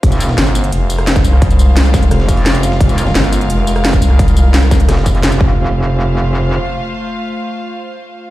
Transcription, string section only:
\new Staff \with { instrumentName = "String section" } { \time 4/4 \key f \minor \tempo 4 = 173 << { <aes f' f''>1~ | <aes f' f''>1~ | <aes f' f''>1~ | <aes f' f''>2.~ <aes f' f''>8 <a f' c'' f''>8~ |
<a f' c'' f''>1~ | <a f' c'' f''>1 | } \\ { c''1~ | c''1 | bes'1~ | bes'2.~ bes'8 r8 |
r1 | r1 | } >> }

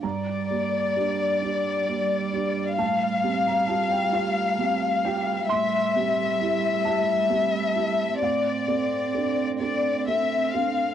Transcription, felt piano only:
\new Staff \with { instrumentName = "Felt piano" } { \time 6/8 \key g \dorian \tempo 4. = 44 << { bes''2. | a''8. bes''16 a''16 g''16 f''4 g''8 | c'''4. a''4. | f''4. r4. | } \\ { g,8 <bes g'>8 <d' g'>8 <d' g'>8 <bes g'>8 <d' g'>8 | a,8 <c' g'>8 <f' g'>8 <f' g'>8 <c' g'>8 <f' g'>8 | a,8 <c' g'>8 <e' g'>8 <e' g'>8 <c' g'>8 <e' g'>8 | a,8 <c' a'>8 <d' a'>8 <d' a'>8 <c' a'>8 <d' a'>8 | } >> }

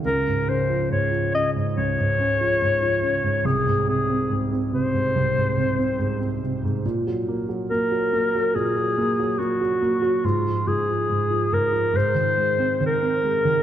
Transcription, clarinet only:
\new Staff \with { instrumentName = "Clarinet" } { \time 4/4 \key des \major \tempo 4 = 71 bes'8 c''8 des''8 ees''8 des''2 | aes'8 aes'8 r8 c''2 r8 | r4 bes'4 aes'4 ges'4 | f'8 aes'4 bes'8 c''4 bes'4 | }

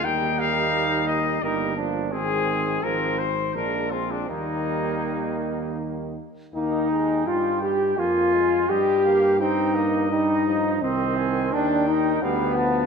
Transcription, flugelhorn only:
\new Staff \with { instrumentName = "Flugelhorn" } { \time 3/4 \key ees \major \tempo 4 = 85 ees'2 ees'8 d'8 | c'4 c'8 r8 d'8 c'8 | bes2~ bes8 r8 | ees'4 f'8 g'8 f'4 |
g'4 ees'4 ees'4 | c'4 d'8 ees'8 b4 | }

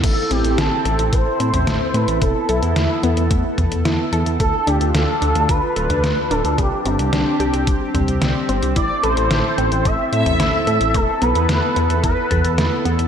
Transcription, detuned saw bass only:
\new Staff \with { instrumentName = "Detuned saw bass" } { \clef bass \time 4/4 \key a \minor \tempo 4 = 110 a,,16 r16 a,,16 a,,16 a,,16 r16 a,,16 a,,16 a,,16 r16 a,16 a,,16 a,,16 r16 a,16 a,,16 | e,,16 r16 b,,16 e,16 e,16 r16 e,16 e,16 e,16 r16 e,16 e,16 e,16 r16 e,16 e,16 | d,16 r16 d,16 d,16 d,16 r16 d,16 d,16 d,16 r16 d,,16 d,16 d,16 r16 d,,16 d,16 | c,16 r16 g,,16 c,16 c,16 r16 c,16 c,16 c,16 r16 c,16 c,16 c,16 r16 g,,16 c,16 |
a,,16 r16 a,,16 a,,16 a,,16 r16 a,,16 a,,16 a,,16 r16 a,16 a,,16 a,,16 r16 a,16 a,,16 | e,,16 r16 b,,16 e,16 e,16 r16 e,16 e,16 e,16 r16 e,16 e,16 e,16 r16 e,16 e,16 | }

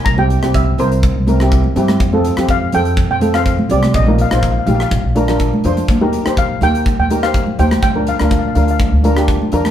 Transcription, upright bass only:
\new Staff \with { instrumentName = "Upright bass" } { \clef bass \time 4/4 \key bes \mixolydian \tempo 4 = 124 c,8. c,8. c,8. c,4~ c,16 g,8 | f,8. f,8. f,8. f,4~ f,16 c,8 | bes,,8. bes,,8. bes,,8 bes,,16 bes,,4~ bes,,16 f,8 | ees,8. ees,8. ees,8. ees,4~ ees,16 ees,8 |
d,8. d,8. d,8. d,4~ d,16 fes,8 | }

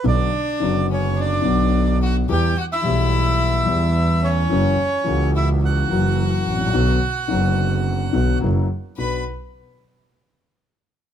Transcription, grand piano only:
\new Staff \with { instrumentName = "Grand piano" } { \clef bass \time 4/4 \key b \minor \tempo 4 = 108 << { <b,, b, d fis b fis'>8 r8 <fis,, fis, d fis b fis'>4. <b,, b, d fis b fis'>4. | <e, e g b g'>8 r8 <b,, b, e g b g'>4. <e, e g b g'>4. | <fis, e fis ais cis' fis'>8 r8 <cis, cis e ais cis' fis'>4. <fis, e fis ais cis' fis'>4. | <b,, b, d fis b fis'>8 r8 <fis,, fis, d fis b fis'>4. <b,, b, d fis b fis'>8 <fis, cis fis ais e'>8 r8 |
<b,, b d' fis'>8 r2. r8 | } \\ { r1 | r1 | r2. r8 r32 gis,,32 a,,32 ais,,32 | r1 |
r1 | } >> }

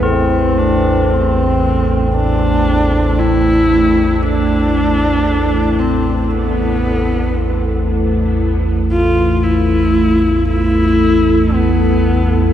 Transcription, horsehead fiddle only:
\new Staff \with { instrumentName = "Horsehead fiddle" } { \time 4/4 \key a \minor \tempo 4 = 58 c'8 d'8 c'4 d'4 e'4 | d'4. c'8 b4. r8 | r8 f'8 e'4 e'4 b4 | }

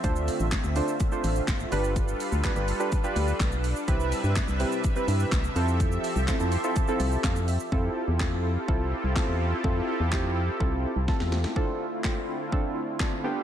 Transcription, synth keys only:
\new Staff \with { instrumentName = "Synth keys" } { \time 4/4 \key f \lydian \tempo 4 = 125 << { r1 | r1 | r1 | r4. c'''8 a''4 f''8 e''8 |
r1 | r1 | r1 | } \\ { <d' f' a' c''>4 r8 <d' f' a' c''>8 r16 <d' f' a' c''>8. r8 <d' f' g' b'>8~ | <d' f' g' b'>8. r16 <d' f' g' b'>16 <d' f' g' b'>16 r16 <d' f' g' b'>16 r16 <d' f' g' b'>4 r8. | <c' e' g' b'>4 r8 <c' e' g' b'>8 r16 <c' e' g' b'>8. r8 <c' e' f' a'>8~ | <c' e' f' a'>8. r16 <c' e' f' a'>16 <c' e' f' a'>16 r16 <c' e' f' a'>16 r16 <c' e' f' a'>4 r8. |
<c' e' f' a'>8 r8 <c' e' f' a'>8 r8 <c' e' f' a'>8 r8 <c' e' f' a'>8 r8 | <c' e' f' a'>8 r8 <c' e' f' g'>8 r8 <c' e' f' a'>8 r8 <c' e' f' a'>8 r8 | <c' d' f' a'>8 r8 <c' d' f' a'>8 r8 <c' d' f' a'>8 r8 <c' d' f' a'>8 <b d' f' g'>8 | } >> }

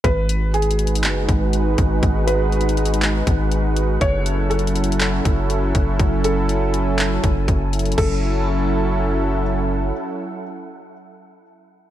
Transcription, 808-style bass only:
\new Staff \with { instrumentName = "808-style bass" } { \clef bass \time 4/4 \key fis \dorian \tempo 4 = 121 gis,,2 fis,,8 gis,,4 gis,,8 | gis,,2~ gis,,8 gis,,4. | fis,,2~ fis,,8 fis,,4 fis,,8 | fis,,2~ fis,,8 fis,,8 fis,,4 |
fis,,1 | r1 | }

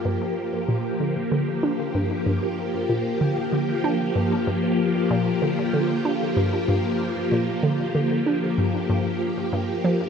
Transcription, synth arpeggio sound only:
\new Staff \with { instrumentName = "Synth arpeggio sound" } { \clef bass \time 4/4 \key g \minor \tempo 4 = 95 g,8 r8 bes,8 d8 d8 d'8 g,8 g,8 | r8 bes,8 d8 d8 d'8 g,8 g,8 r8 | bes,8 d8 d8 d'8 g,8 g,8 r8 bes,8 | d8 d8 d'8 g,8 g,8 r8 g,8 f8 | }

